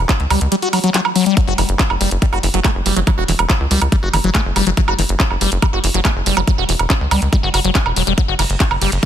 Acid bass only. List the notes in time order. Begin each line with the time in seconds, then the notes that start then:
0.09 C#4
0.31 G3
0.52 G3
0.62 F#4
0.73 F#3
0.84 F#3
0.94 F#3
1.16 F#3
1.26 G3
1.37 F#3
1.47 F#4
1.58 E3
1.79 C#4
2.01 G3
2.22 G3
2.33 F#4
2.43 E3
2.54 F#3
2.65 A3
2.86 G3
2.96 F#3
3.07 F#3
3.18 F#4
3.28 E3
3.50 C#4
3.71 G3
3.92 G3
4.03 F#4
4.13 E3
4.24 F#3
4.35 A3
4.56 G3
4.67 F#3
4.77 F#3
4.88 F#4
4.99 E3
5.20 C#4
5.41 G3
5.62 G3
5.73 F#4
5.84 E3
5.94 F#3
6.05 A3
6.26 G3
6.37 F#3
6.47 F#3
6.58 F#4
6.69 E3
6.90 C#4
7.11 G3
7.33 G3
7.43 F#4
7.54 F#4
7.65 F#3
7.75 C#4
7.96 F#3
8.07 G3
8.18 F#3
8.28 F#4
8.39 E3
8.60 C#4
8.82 G3